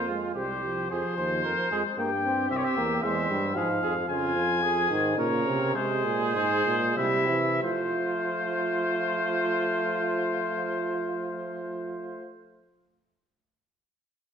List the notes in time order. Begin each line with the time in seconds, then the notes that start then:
Already playing: F2 F4 C5
0.09 G#3
0.35 C2 G3 G4 C5
0.64 F3
0.90 F2 F3 G#4 C5
1.18 D#2 C5
1.44 F2 A#4
1.71 F2 G#3 G#4
1.98 G2 A#3 G4 G5
2.25 C4
2.50 C2 C4 E5
2.57 C#5
2.64 E5
2.77 E2 A#3
3.03 E2 G#3 C5 E5
3.30 G2 G3
3.55 G#2 F3 G#4 F5
3.83 F2 G#4
4.09 F2 C#3 F4 G#5
4.35 F3
4.63 F3 G#4
4.90 G#2 D#3
5.18 A#2 C#3 A#4 C#5
5.46 C3
5.75 C3 G#3 G#4 C5
6.04 A#2
6.34 G#2 C5
6.65 A#2
6.97 C3 G3 E4 E5
7.30 E3
7.63 F3 A3 F4 C5